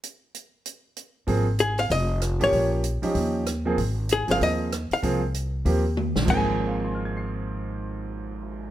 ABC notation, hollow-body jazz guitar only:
X:1
M:4/4
L:1/8
Q:"Swing" 1/4=192
K:Ab
V:1 name="Hollow-body jazz guitar"
z8 | z2 A f e2 z d- | d z6 z | z2 A f e2 z f- |
f z6 z | a8- | a8 |]